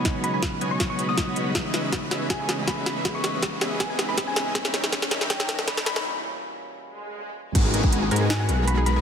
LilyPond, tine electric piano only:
\new Staff \with { instrumentName = "Tine electric piano" } { \clef bass \time 4/4 \key gis \minor \tempo 4 = 160 <cis fis gis b dis'>2~ <cis fis gis b dis'>8 r8 <cis fis gis b dis'>8 r8 | <cis e gis b dis'>2~ <cis e gis b dis'>8 <cis e gis b>4. | <cis e gis b>2~ <cis e gis b>8 <cis e gis b dis'>8 <cis e b>4 | <b, e g ais cis'>2~ <b, e g ais cis'>8 <b, e g ais cis'>4. |
<b, e g ais cis'>2~ <b, e g ais cis'>8 r8 <b, e g ais cis'>8 r8 | r1 | }